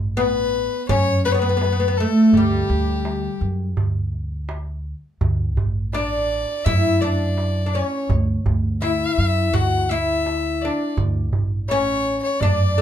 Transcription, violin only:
0.17 B4
0.89 C#5
1.25 B4
1.32 C#5
1.39 B4
1.97 A4
2.34 G4
5.94 D5
6.65 E5
7.01 D5
7.73 C#5
8.82 E5
9.54 F#5
9.89 E5
10.61 D5
11.69 C#5
12.23 C#5
12.40 D5

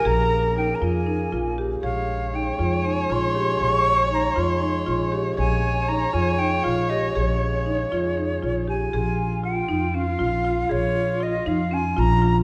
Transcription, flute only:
0.07 A#5
0.58 G5
0.75 A#5
0.84 G#5
1.84 F5
2.35 G5
2.86 G#5
3.12 C6
3.62 C#6
4.14 A#5
4.39 C6
5.39 G#5
5.88 A#5
6.14 G#5
6.39 G5
6.64 F5
6.89 D#5
7.16 C#5
8.69 G#5
9.44 G5
9.95 F5
10.71 C#5
11.23 D#5
11.48 F5
11.74 G#5
11.99 A#5

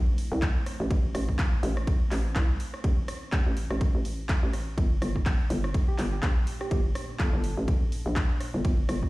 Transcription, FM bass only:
Already playing: A#1
0.32 C2
0.80 A1
0.91 A1
1.15 A1
1.63 A1
2.11 A1
2.36 C2
2.84 A1
3.32 A1
3.46 A1
3.71 A1
3.95 A1
4.43 A1
4.78 G1
5.02 G1
5.50 G1
5.99 G1
6.23 A#1
6.71 G1
7.20 G1
7.33 G1
7.58 A1
8.06 A#1
8.54 G1
8.65 G1
8.89 G1

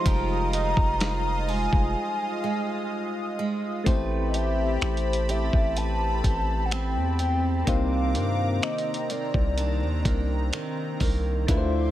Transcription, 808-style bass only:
0.06 F1
0.77 F1
1.73 F1
3.87 A1
4.82 A1
5.53 A1
6.24 A1
6.96 E2
7.67 C2
8.15 G2
9.34 C2
9.82 D#2
10.05 C2
11.01 C2
11.49 D2

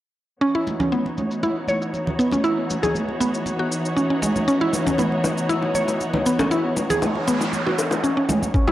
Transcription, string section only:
0.42 E3 B3 D#4 F#4 C#5
8.54 E3 B3 D#4 F#4 C#5

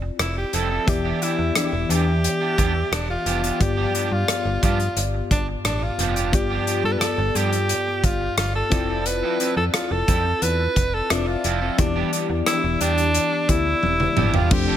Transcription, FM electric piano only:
Already playing: C4 E4 F4 D5
0.86 E3 B3 G4 D5 E5
3.60 G2 B3 F4 G4 D5
6.32 G2 B3 F4 G4 D5
8.70 C4 E4 F4 D5
11.10 C4 F4 D5 E5
11.78 E3 B3 E4 G4 D5
13.49 B3 E4 G4 D5
14.50 F3 A3 C4 D4 C5

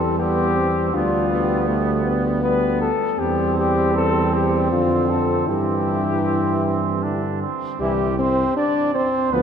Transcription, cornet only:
Already playing: A4
0.19 G4
0.94 F4
2.43 B4
2.82 A4
3.19 G4
3.58 G4
3.97 A4
4.34 G4
4.72 F4
5.10 A4
5.49 G4
7.82 E4
9.34 B4

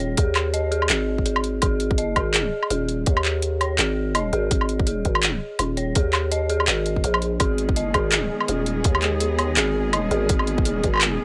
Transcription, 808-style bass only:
Already playing: D#1
0.18 D#2
0.90 G#1
1.62 G#1
1.99 G1
2.16 G#1
2.71 D#1
3.07 D#2
3.79 G#1
4.33 G#1
4.51 G#1
5.05 G#1
5.60 D#1
5.96 D#2
6.68 G#1
7.04 A#1
7.40 G#1
7.95 G#1
8.49 D#1
8.85 D#2
9.57 G#1
10.11 G#1
10.29 G#1
10.84 G#1

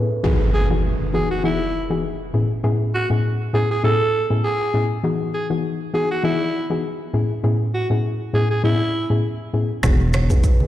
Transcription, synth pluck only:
Already playing: C#4 E4 G#4
0.23 E3 B3 D#4 F#4 G#4
0.70 E3 B3 D#4 F#4 G#4
1.13 E3 B3 D#4 F#4 G#4
1.43 E3 B3 D#4 F#4 G#4
1.90 E3 B3 D#4 F#4 G#4
2.33 A2 B3 C#4 E4 G#4
2.63 A2 B3 C#4 E4 G#4
3.10 A2 B3 C#4 E4 G#4
3.53 A2 B3 C#4 E4 G#4
3.83 A2 B3 C#4 E4 G#4
4.30 A2 B3 C#4 E4 G#4
4.74 A2 B3 C#4 E4 G#4
5.03 E3 B3 D#4 F#4 G#4
5.50 E3 B3 D#4 F#4 G#4
5.93 E3 B3 D#4 F#4 G#4
6.23 E3 B3 D#4 F#4 G#4
6.70 E3 B3 D#4 F#4 G#4
7.13 A2 B3 C#4 E4 G#4
7.43 A2 B3 C#4 E4 G#4
7.90 A2 B3 C#4 E4 G#4
8.33 A2 B3 C#4 E4 G#4
8.63 A2 B3 C#4 E4 G#4
9.10 A2 B3 C#4 E4 G#4
9.53 A2 B3 C#4 E4 G#4
9.83 B3 D#4 F#4 G#4
10.30 B3 D#4 F#4 G#4

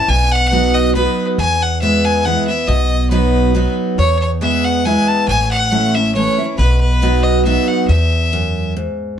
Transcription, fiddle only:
Already playing: A5
0.09 G#5
0.32 F#5
0.75 D#5
0.95 B4
1.39 G#5
1.62 F#5
1.81 E5
2.05 G#5
2.25 F#5
2.47 E5
2.67 D#5
3.10 B4
3.98 C#5
4.21 C#5
4.42 E5
4.64 F#5
4.85 G#5
5.08 A5
5.28 G#5
5.51 F#5
5.94 E5
6.14 C#5
6.58 B4
6.80 B4
7.23 D#5
7.44 E5
7.68 F#5
7.88 E5

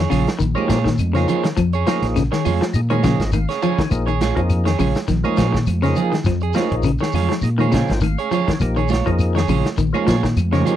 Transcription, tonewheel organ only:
0.55 F3 A#3 D#4 G4
1.14 F3 A#3 D#4 F4
1.86 F3 A#3 D#4 G#4
2.74 D#4 G#4
2.90 F3 A#3 D#4 G#4
3.04 D#5
3.33 F5
3.62 G#5
3.90 F3 A#3 D#4 G#4
4.35 F3 A#3 D#4 G#4
5.24 F3 A#3 D#4 G#4
5.82 F3 A#3 D#4 G#4
6.54 F3 A#3 D#4 G#4
7.43 D#4 G#4
7.58 F3 A#3 D#4 F4
7.72 G5
8.02 F5
8.31 C#5
8.60 F3 A#3 D#4 G4
9.05 F3 A#3 D#4 G#4
9.93 F3 A#3 D#4 F4
10.51 F3 A#3 D#4 G4

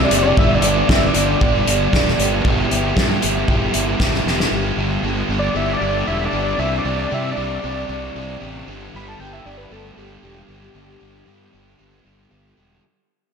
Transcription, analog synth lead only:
0.04 D5
0.22 D5
0.38 E5
0.55 D5
0.72 D5
0.91 E5
1.07 D5
1.26 D5
5.39 D5
5.57 E5
5.73 D5
5.89 D5
6.07 E5
6.25 D5
6.43 D5
6.59 E5
6.78 D5
6.96 D5
7.14 E5
7.31 D5
7.48 D5
8.96 B5
9.08 A5
9.20 G5
9.33 E5
9.46 D5
9.58 B4
9.72 A4
9.98 G4

